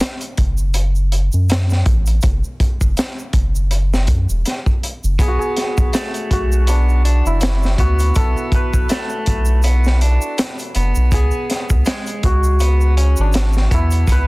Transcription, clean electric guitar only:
0, 0, Header, 1, 2, 480
1, 0, Start_track
1, 0, Tempo, 740741
1, 1445, Time_signature, 4, 2, 24, 8
1, 9248, End_track
2, 0, Start_track
2, 0, Title_t, "Clean electric guitar"
2, 0, Program_c, 0, 27
2, 3367, Note_on_c, 0, 59, 71
2, 3825, Note_off_c, 0, 59, 0
2, 3847, Note_on_c, 0, 57, 91
2, 4305, Note_off_c, 0, 57, 0
2, 4327, Note_on_c, 0, 59, 72
2, 4555, Note_off_c, 0, 59, 0
2, 4568, Note_on_c, 0, 62, 70
2, 4796, Note_off_c, 0, 62, 0
2, 5048, Note_on_c, 0, 59, 69
2, 5276, Note_off_c, 0, 59, 0
2, 5288, Note_on_c, 0, 59, 72
2, 5746, Note_off_c, 0, 59, 0
2, 5765, Note_on_c, 0, 57, 84
2, 6224, Note_off_c, 0, 57, 0
2, 6246, Note_on_c, 0, 59, 74
2, 6475, Note_off_c, 0, 59, 0
2, 6491, Note_on_c, 0, 62, 72
2, 6717, Note_off_c, 0, 62, 0
2, 6971, Note_on_c, 0, 59, 69
2, 7198, Note_off_c, 0, 59, 0
2, 7209, Note_on_c, 0, 59, 72
2, 7666, Note_off_c, 0, 59, 0
2, 7684, Note_on_c, 0, 56, 84
2, 8144, Note_off_c, 0, 56, 0
2, 8167, Note_on_c, 0, 59, 74
2, 8395, Note_off_c, 0, 59, 0
2, 8405, Note_on_c, 0, 61, 68
2, 8634, Note_off_c, 0, 61, 0
2, 8884, Note_on_c, 0, 59, 69
2, 9114, Note_off_c, 0, 59, 0
2, 9123, Note_on_c, 0, 59, 77
2, 9248, Note_off_c, 0, 59, 0
2, 9248, End_track
0, 0, End_of_file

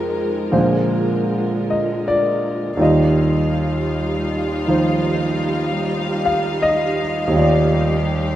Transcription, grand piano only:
0, 0, Header, 1, 2, 480
1, 0, Start_track
1, 0, Key_signature, -3, "major"
1, 0, Tempo, 1132075
1, 1186, Time_signature, 4, 2, 24, 8
1, 3543, End_track
2, 0, Start_track
2, 0, Title_t, "Grand piano"
2, 0, Program_c, 0, 0
2, 0, Control_c, 0, 64, 127
2, 0, Note_on_c, 0, 41, 42
2, 0, Note_on_c, 0, 48, 39
2, 0, Note_on_c, 0, 56, 38
2, 0, Note_on_c, 0, 63, 38
2, 0, Note_on_c, 0, 67, 38
2, 0, Note_on_c, 0, 70, 49
2, 214, Note_off_c, 0, 41, 0
2, 216, Note_off_c, 0, 56, 0
2, 218, Note_off_c, 0, 48, 0
2, 219, Note_on_c, 0, 46, 47
2, 221, Note_on_c, 0, 53, 40
2, 222, Note_on_c, 0, 50, 37
2, 223, Note_on_c, 0, 56, 36
2, 223, Note_on_c, 0, 72, 50
2, 227, Note_off_c, 0, 63, 0
2, 230, Control_c, 0, 64, 0
2, 232, Note_off_c, 0, 67, 0
2, 237, Note_off_c, 0, 70, 0
2, 312, Control_c, 0, 64, 127
2, 722, Note_on_c, 0, 75, 57
2, 869, Note_off_c, 0, 75, 0
2, 881, Note_on_c, 0, 74, 69
2, 1135, Note_off_c, 0, 74, 0
2, 1174, Note_on_c, 0, 39, 54
2, 1181, Note_on_c, 0, 51, 47
2, 1183, Note_off_c, 0, 46, 0
2, 1184, Note_off_c, 0, 50, 0
2, 1184, Note_off_c, 0, 53, 0
2, 1185, Note_off_c, 0, 56, 0
2, 1185, Note_off_c, 0, 72, 0
2, 1186, Note_on_c, 0, 55, 46
2, 1191, Note_on_c, 0, 65, 49
2, 1192, Control_c, 0, 64, 0
2, 1196, Note_on_c, 0, 75, 52
2, 1275, Control_c, 0, 64, 127
2, 1973, Note_off_c, 0, 51, 0
2, 1980, Note_on_c, 0, 51, 35
2, 1985, Note_on_c, 0, 53, 37
2, 1987, Note_on_c, 0, 63, 37
2, 1991, Note_on_c, 0, 72, 41
2, 2652, Note_on_c, 0, 77, 70
2, 2795, Note_off_c, 0, 77, 0
2, 2802, Note_off_c, 0, 75, 0
2, 2809, Note_on_c, 0, 75, 76
2, 2963, Note_off_c, 0, 75, 0
2, 3078, Note_off_c, 0, 39, 0
2, 3084, Note_on_c, 0, 39, 55
2, 3089, Note_off_c, 0, 51, 0
2, 3096, Note_on_c, 0, 51, 49
2, 3101, Note_off_c, 0, 55, 0
2, 3106, Note_off_c, 0, 53, 0
2, 3106, Note_off_c, 0, 63, 0
2, 3107, Note_on_c, 0, 55, 48
2, 3109, Note_off_c, 0, 65, 0
2, 3109, Note_off_c, 0, 72, 0
2, 3119, Note_on_c, 0, 65, 48
2, 3131, Note_on_c, 0, 74, 56
2, 3543, Note_off_c, 0, 39, 0
2, 3543, Note_off_c, 0, 51, 0
2, 3543, Note_off_c, 0, 55, 0
2, 3543, Note_off_c, 0, 65, 0
2, 3543, Note_off_c, 0, 74, 0
2, 3543, End_track
0, 0, End_of_file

